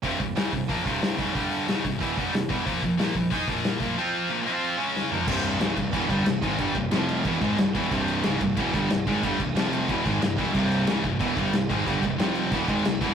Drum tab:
CC |--------|--------|--------|--------|
HH |oooooooo|oooooooo|oooooooo|--------|
SD |--o---o-|--o---o-|--o---o-|------o-|
FT |--------|--------|--------|-------o|
BD |oo-ooo-o|o--ooo-o|oo-ooo-o|--------|

CC |xxxxxxxx|xxxxxxxx|xxxxxxxx|xxxxxxxx|
HH |--------|--------|--------|--------|
SD |--o---o-|--o---o-|--o---o-|--o---o-|
FT |--------|--------|--------|--------|
BD |o--ooo-o|oo--oo-o|o--ooo-o|oo--oo-o|

CC |xxxxxxxx|xxxxxxxx|
HH |--------|--------|
SD |--o---o-|--o---o-|
FT |--------|--------|
BD |o--ooo-o|oo--oo-o|